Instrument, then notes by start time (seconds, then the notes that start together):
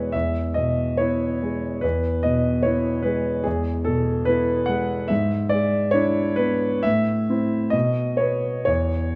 grand piano
Already playing: E2 B2 G#3 B3 E4 B4 C#5 D#5 E5
0.12 E2 E5
0.54 B2 D#5
0.97 B3 E4 C#5
1.42 G#3
1.81 E2 B4
2.23 B2 D#5
2.63 B3 E4 C#5
3.03 G#3 B4
3.44 E2 G#4
3.85 B2 A4
4.25 B3 E4 B4
4.66 G#3 F#5
5.08 G#2 E5
5.49 G#3 D5
5.91 D4 E4 C#5
6.36 B3 B4
6.83 A2 E5
7.30 C4 E4
7.70 B2 D#5
8.17 B3 B4 C#5
8.65 E2 C#5